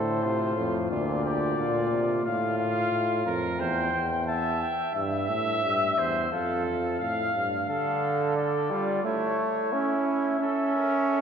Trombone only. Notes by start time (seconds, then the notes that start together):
Already playing: D3
0.24 C3
0.57 A2
0.91 A#2
1.57 D3
1.91 C3
7.68 D3
8.71 G3
9.04 A3
9.73 C#4
10.40 C#4